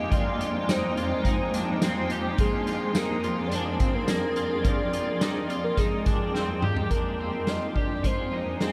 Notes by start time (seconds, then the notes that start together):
Already playing: F2 F3 G#3 A#3 D#4 G4 G#4 D#5 G5
0.09 F3 A#3, kick, closed hi-hat
0.13 D#4 F4 D5
0.17 G#4
0.41 F4, closed hi-hat
0.69 D#4 C5, snare, closed hi-hat, tambourine
0.97 F4, closed hi-hat
1.23 F3 A#3 D#4, kick, closed hi-hat
1.29 D#4 G#4
1.54 D4, closed hi-hat
1.82 C4, snare, closed hi-hat, tambourine
2.10 G4, closed hi-hat
2.37 F3 A#3 C4 F4 G#4 D5, kick, closed hi-hat
2.42 D4 G#4
2.67 F4, closed hi-hat
2.95 D#4 A#4, snare, closed hi-hat, tambourine
3.24 F4, closed hi-hat
3.47 F3 D5
3.51 A#3 D4 C5, closed hi-hat
3.57 G#4
3.80 C4, kick, closed hi-hat
3.95 A#4
4.08 A#3 A#4, snare, closed hi-hat, tambourine
4.36 F4, closed hi-hat
4.63 F2 F3 A#3 D#4 F4 G4 D5 G5, kick, closed hi-hat
4.93 F4, closed hi-hat
5.08 D5
5.20 A#3 D#4 G4, snare, closed hi-hat, tambourine
5.25 D5
5.50 F4, closed hi-hat
5.64 A#4
5.77 F3 G#3 D#4 G#4, kick, closed hi-hat
6.06 D4, kick, closed hi-hat
6.35 C4, snare
6.61 D#4 G4, mid tom
6.66 G#3
6.76 floor tom
6.89 F2 F3 G#3 A#3 D4 D#4 A#4 G5, kick, closed hi-hat
6.95 D#4 G#4
7.20 C4
7.47 F4 D#5, snare, closed hi-hat
7.76 G4 D5, kick
8.03 F3 A#3 D#4 F4 C5, kick, closed hi-hat
8.08 G#4
8.33 D#4
8.60 F3 A#3 C4 D#4 G#4, snare, closed hi-hat
8.66 G#4